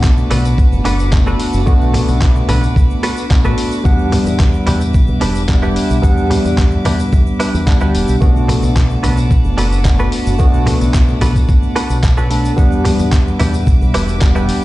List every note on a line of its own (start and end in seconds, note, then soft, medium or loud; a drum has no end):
0.00 0.23 B1 loud
0.00 1.09 A3 loud
0.00 1.09 B3 medium
0.00 1.10 D4 medium
0.00 1.10 F#4 loud
0.00 8.18 B4 medium
0.00 3.81 F#5 medium
0.00 3.81 A5 medium
0.00 12.54 D6 medium
0.00 kick loud
0.00 clap loud
0.00 tambourine soft
0.00 shaker medium
0.17 shaker soft
0.30 0.58 B1 medium
0.30 0.45 D4 medium
0.30 0.45 F#4 medium
0.30 0.45 A4 medium
0.30 0.45 B4 loud
0.30 open hi-hat loud
0.30 tambourine medium
0.30 high conga medium
0.30 low conga medium
0.45 tambourine soft
0.45 shaker medium
0.58 muted clean electric guitar stroke soft
0.58 muted fingered electric bass stroke soft
0.58 kick loud
0.58 tambourine soft
0.58 shaker medium
0.72 0.80 F#1 loud
0.72 shaker soft
0.85 1.39 F#1 medium
0.85 1.06 D4 loud
0.85 1.06 F#4 loud
0.85 1.06 A4 loud
0.85 1.06 B4 loud
0.85 open hi-hat loud
0.85 tambourine medium
0.99 tambourine soft
0.99 shaker medium
1.12 1.63 A3 medium
1.12 1.64 B3 medium
1.12 1.64 D4 medium
1.12 1.64 F#4 medium
1.12 kick loud
1.12 clap loud
1.12 tambourine soft
1.12 shaker medium
1.27 1.60 D4 medium
1.27 1.61 F#4 medium
1.27 1.61 A4 medium
1.27 1.61 B4 medium
1.27 shaker soft
1.40 muted fingered electric bass stroke soft
1.40 open hi-hat loud
1.40 tambourine medium
1.53 1.62 F#1 loud
1.53 tambourine soft
1.53 shaker medium
1.66 2.00 B1 loud
1.66 3.27 A3 loud
1.66 3.27 B3 medium
1.66 3.28 D4 medium
1.66 3.28 F#4 loud
1.66 kick loud
1.66 tambourine soft
1.66 shaker medium
1.81 shaker soft
1.94 muted clean electric guitar stroke loud
1.94 open hi-hat loud
1.94 tambourine medium
1.94 low conga medium
2.08 2.41 B1 loud
2.08 muted clean electric guitar stroke soft
2.08 tambourine soft
2.08 shaker medium
2.21 kick loud
2.21 clap loud
2.21 tambourine soft
2.21 shaker medium
2.36 shaker soft
2.49 2.66 B1 medium
2.49 2.63 D4 medium
2.49 2.63 F#4 medium
2.49 2.63 A4 medium
2.49 2.63 B4 medium
2.49 open hi-hat loud
2.49 tambourine medium
2.49 high conga medium
2.49 low conga medium
2.63 tambourine soft
2.63 shaker medium
2.76 muted clean electric guitar stroke soft
2.76 kick loud
2.76 tambourine soft
2.76 shaker medium
2.90 shaker soft
3.03 3.24 D4 loud
3.03 3.24 F#4 loud
3.03 3.24 A4 loud
3.03 3.24 B4 loud
3.03 open hi-hat loud
3.03 tambourine medium
3.17 tambourine soft
3.17 shaker medium
3.30 3.82 A3 medium
3.30 3.82 B3 medium
3.30 3.82 D4 medium
3.30 3.82 F#4 medium
3.30 kick loud
3.30 clap loud
3.30 tambourine soft
3.30 shaker medium
3.44 3.53 A1 medium
3.44 3.79 D4 medium
3.44 3.79 F#4 medium
3.44 3.79 A4 medium
3.44 3.79 B4 loud
3.44 shaker soft
3.58 open hi-hat loud
3.58 tambourine medium
3.71 tambourine soft
3.71 shaker medium
3.83 4.18 E2 loud
3.83 5.45 G3 loud
3.83 5.45 B3 medium
3.83 5.46 D4 medium
3.83 8.18 E5 medium
3.83 5.46 F#5 loud
3.83 kick loud
3.83 tambourine soft
3.83 shaker medium
3.99 shaker soft
4.12 muted clean electric guitar stroke loud
4.12 open hi-hat loud
4.12 tambourine medium
4.12 low conga medium
4.26 4.59 E2 loud
4.26 muted clean electric guitar stroke soft
4.26 tambourine soft
4.26 shaker medium
4.39 kick loud
4.39 clap loud
4.39 tambourine soft
4.39 shaker medium
4.54 shaker soft
4.66 4.94 E2 medium
4.66 4.81 D4 medium
4.66 4.81 E4 medium
4.66 4.81 G4 medium
4.66 4.81 B4 medium
4.66 open hi-hat loud
4.66 tambourine medium
4.66 high conga medium
4.66 low conga medium
4.81 tambourine soft
4.81 shaker medium
4.94 muted clean electric guitar stroke soft
4.94 muted fingered electric bass stroke soft
4.94 kick loud
4.94 tambourine soft
4.94 shaker medium
5.07 5.16 B1 loud
5.07 shaker soft
5.21 5.76 E1 medium
5.21 5.42 D4 loud
5.21 5.42 E4 medium
5.21 5.42 G4 loud
5.21 5.42 B4 loud
5.21 open hi-hat loud
5.21 tambourine medium
5.35 tambourine soft
5.35 shaker medium
5.48 6.00 G3 medium
5.48 6.00 B3 medium
5.48 6.00 D4 medium
5.48 6.00 F#5 medium
5.48 kick loud
5.48 clap loud
5.48 tambourine soft
5.48 shaker medium
5.62 5.97 D4 medium
5.62 5.97 E4 medium
5.62 5.97 G4 medium
5.62 5.97 B4 medium
5.62 shaker soft
5.76 muted fingered electric bass stroke soft
5.76 open hi-hat loud
5.76 tambourine medium
5.90 5.98 B1 loud
5.90 tambourine soft
5.90 shaker medium
6.02 6.36 E2 loud
6.02 7.63 G3 loud
6.02 7.63 B3 medium
6.02 7.64 D4 medium
6.02 7.64 F#5 loud
6.02 kick loud
6.02 tambourine soft
6.02 shaker medium
6.17 shaker soft
6.30 muted clean electric guitar stroke loud
6.30 open hi-hat loud
6.30 tambourine medium
6.30 low conga medium
6.45 6.77 E2 loud
6.45 muted clean electric guitar stroke soft
6.45 tambourine soft
6.45 shaker medium
6.58 kick loud
6.58 clap loud
6.58 tambourine soft
6.58 shaker medium
6.71 shaker soft
6.85 7.03 E2 medium
6.85 6.99 D4 medium
6.85 7.00 E4 medium
6.85 7.00 G4 medium
6.85 7.00 B4 loud
6.85 open hi-hat loud
6.85 tambourine medium
6.85 high conga medium
6.85 low conga medium
6.99 tambourine soft
6.99 shaker medium
7.12 7.21 E2 loud
7.12 muted clean electric guitar stroke soft
7.12 kick loud
7.12 tambourine soft
7.12 shaker medium
7.26 shaker soft
7.40 7.60 D4 loud
7.40 7.61 E4 loud
7.40 7.61 G4 loud
7.40 7.61 B4 loud
7.40 open hi-hat loud
7.40 tambourine medium
7.54 7.81 E2 loud
7.54 tambourine soft
7.54 shaker medium
7.66 8.18 G3 medium
7.66 8.18 B3 medium
7.66 8.18 D4 medium
7.66 8.18 F#5 medium
7.66 kick loud
7.66 clap loud
7.66 tambourine soft
7.66 shaker medium
7.80 7.89 D2 medium
7.80 8.15 D4 medium
7.80 8.15 E4 medium
7.80 8.15 G4 medium
7.80 8.15 B4 loud
7.80 shaker soft
7.95 8.03 E1 medium
7.95 open hi-hat loud
7.95 tambourine medium
8.08 8.16 B1 medium
8.08 tambourine soft
8.08 shaker medium
8.20 8.54 B1 loud
8.20 9.82 A3 loud
8.20 9.82 B3 medium
8.20 9.82 D4 medium
8.20 9.82 F#4 loud
8.20 14.64 B4 medium
8.20 12.54 F#5 medium
8.20 12.54 A5 medium
8.20 kick loud
8.20 tambourine soft
8.20 shaker medium
8.36 shaker soft
8.48 muted clean electric guitar stroke loud
8.48 open hi-hat loud
8.48 tambourine medium
8.48 low conga medium
8.62 8.95 B1 loud
8.62 muted clean electric guitar stroke soft
8.62 tambourine soft
8.62 shaker medium
8.76 kick loud
8.76 clap loud
8.76 tambourine soft
8.76 shaker medium
8.90 shaker soft
9.03 9.30 B1 medium
9.03 9.17 D4 medium
9.03 9.18 F#4 medium
9.03 9.18 A4 medium
9.03 9.18 B4 medium
9.03 open hi-hat loud
9.03 tambourine medium
9.03 high conga medium
9.03 low conga medium
9.17 tambourine soft
9.17 shaker medium
9.30 muted clean electric guitar stroke soft
9.30 kick loud
9.30 tambourine soft
9.30 shaker medium
9.44 9.53 F#1 loud
9.44 shaker soft
9.58 10.11 F#1 medium
9.58 9.79 D4 loud
9.58 9.79 F#4 medium
9.58 9.79 A4 loud
9.58 9.79 B4 loud
9.58 open hi-hat loud
9.58 tambourine medium
9.72 tambourine soft
9.72 shaker medium
9.85 10.36 A3 medium
9.85 10.37 B3 medium
9.85 10.37 D4 medium
9.85 10.37 F#4 medium
9.85 kick loud
9.85 clap loud
9.85 tambourine soft
9.85 shaker medium
9.99 10.33 D4 medium
9.99 10.33 F#4 medium
9.99 10.33 A4 medium
9.99 10.33 B4 loud
9.99 shaker soft
10.12 muted fingered electric bass stroke soft
10.12 open hi-hat loud
10.12 tambourine medium
10.26 10.35 F#1 loud
10.26 tambourine soft
10.26 shaker medium
10.38 10.72 B1 loud
10.38 12.00 A3 loud
10.38 12.00 B3 medium
10.38 12.00 D4 medium
10.38 12.01 F#4 loud
10.38 kick loud
10.38 tambourine soft
10.38 shaker medium
10.54 shaker soft
10.66 muted clean electric guitar stroke loud
10.66 open hi-hat loud
10.66 tambourine medium
10.66 low conga medium
10.81 11.14 B1 loud
10.81 muted clean electric guitar stroke soft
10.81 tambourine soft
10.81 shaker medium
10.94 kick loud
10.94 clap loud
10.94 tambourine soft
10.94 shaker medium
11.08 shaker soft
11.21 11.39 B1 medium
11.21 11.36 D4 medium
11.21 11.36 F#4 medium
11.21 11.36 A4 medium
11.21 11.36 B4 loud
11.21 open hi-hat loud
11.21 tambourine medium
11.21 high conga medium
11.21 low conga medium
11.36 kick medium
11.36 tambourine soft
11.36 shaker medium
11.48 11.57 B1 medium
11.48 muted clean electric guitar stroke soft
11.48 kick loud
11.48 tambourine soft
11.48 shaker medium
11.63 shaker soft
11.76 11.97 D4 loud
11.76 11.97 F#4 loud
11.76 11.97 A4 loud
11.76 11.97 B4 loud
11.76 open hi-hat loud
11.76 tambourine medium
11.90 12.50 B1 medium
11.90 tambourine soft
11.90 shaker medium
12.03 kick loud
12.03 clap loud
12.03 tambourine soft
12.03 shaker medium
12.17 12.51 D4 medium
12.17 12.51 F#4 medium
12.17 12.51 A4 medium
12.17 12.52 B4 loud
12.17 shaker soft
12.30 12.54 A3 medium
12.30 12.55 B3 medium
12.30 12.55 D4 medium
12.30 12.55 A4 medium
12.30 open hi-hat loud
12.30 tambourine medium
12.45 tambourine soft
12.45 shaker medium
12.56 12.91 E2 loud
12.56 14.18 G3 loud
12.56 14.18 B3 medium
12.56 14.18 D4 medium
12.56 14.64 E5 medium
12.56 14.19 F#5 loud
12.56 14.64 D6 medium
12.56 kick loud
12.56 tambourine soft
12.56 shaker medium
12.72 shaker soft
12.85 muted clean electric guitar stroke loud
12.85 open hi-hat loud
12.85 tambourine medium
12.85 low conga loud
12.99 13.32 E2 loud
12.99 muted clean electric guitar stroke soft
12.99 tambourine soft
12.99 shaker medium
13.12 kick loud
13.12 clap loud
13.12 tambourine soft
13.12 shaker medium
13.27 shaker soft
13.39 13.67 E2 medium
13.39 13.54 D4 medium
13.39 13.54 E4 medium
13.39 13.54 G4 medium
13.39 13.54 B4 medium
13.39 open hi-hat loud
13.39 tambourine medium
13.39 high conga medium
13.39 low conga medium
13.53 tambourine soft
13.53 shaker medium
13.67 muted fingered electric bass stroke soft
13.67 muted clean electric guitar stroke soft
13.67 kick loud
13.67 tambourine soft
13.67 shaker medium
13.81 13.89 B1 loud
13.81 shaker soft
13.94 14.49 E1 medium
13.94 14.15 D4 medium
13.94 14.15 E4 loud
13.94 14.15 G4 loud
13.94 14.15 B4 loud
13.94 open hi-hat loud
13.94 tambourine medium
14.08 tambourine soft
14.08 shaker medium
14.20 14.64 G3 medium
14.20 14.64 B3 medium
14.20 14.64 D4 medium
14.20 14.64 F#5 medium
14.20 kick loud
14.20 clap loud
14.20 tambourine soft
14.20 shaker medium
14.35 14.64 D4 medium
14.35 14.64 E4 medium
14.35 14.64 G4 medium
14.35 14.64 B4 medium
14.35 shaker soft
14.49 muted fingered electric bass stroke soft
14.49 open hi-hat loud
14.49 tambourine medium